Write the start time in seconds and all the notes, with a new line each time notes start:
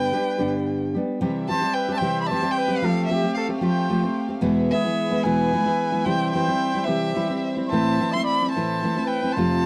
Already playing: G2 D3 G3 B3 D4 G4 B4 G5
0.12 G3 B3 D4 G4
0.38 G2 D3 G3 B3 D4 G4
0.94 G3 B3 D4 G4
1.18 C3 E3 G3 C4 G4 E5
1.22 G4
1.48 E3 G3 C4 G4 C5 A5
1.62 G3 C4 G4
1.74 B4 G5
1.89 G3 C4 G4
1.93 C5 A5
1.98 C3 E3 G3 C5 G5
2.02 C4 G4
2.21 B5
2.26 D5 A5
2.30 E3 G3 C4 G4 C5
2.43 G3 C4 G4
2.51 G5
2.57 B4
2.68 G3 C4 G4
2.77 F5
2.82 F3 A3 C4 G4 A4 F5
3.07 F3 A3 C4 E5
3.11 G4
3.24 A3 C4 G4
3.34 A4 F5
3.49 A3 C4 G4
3.61 F3 A3 C4 G4 C5 G5
3.90 F3 A3 C4 G4
4.02 A3 C4 G4
4.29 A3 C4 G4
4.41 E2 B2 E3 G#3 B3 E4 E5
4.46 G#4
4.71 E3 G#3 B3 E4 G#4 E5
4.85 E3 G#3 B3 E4
5.11 E3 G#3 B3 E4
5.23 E2 B2 E3 G#3 B3 E4 B4 G#5
5.53 E3 G#3 B3 E4
5.66 E3 G#3 B3 E4
5.92 E3 G#3 B3 E4
6.05 C3 E3 G3 C4 E4 G4 C5 G5
6.33 E3 G3 C4 E4 C5 G5
6.48 G3 C4 E4
6.75 G3 C4 E4
6.84 C3 E3 G3 C4 E4 G4 E5
7.15 E3 G3 C4 E4
7.30 G3 C4 E4
7.57 G3 C4 E4
7.67 C5 A5
7.72 A2 E3 A3 C4 E4 A4
8.01 E3 A3 C4 E4
8.11 E4 E5 C6
8.15 A3 C4
8.23 D5 B5
8.42 A3 C4 E4
8.49 C5 A5
8.56 A2 E3 A3 C4 E4
8.83 E3 A3 C4 E4
8.97 A3 C4 E4
9.05 B4 G5
9.23 A3 C4 E4
9.32 C5 A5
9.36 F2 C3 F3 A3 C4 F4 F5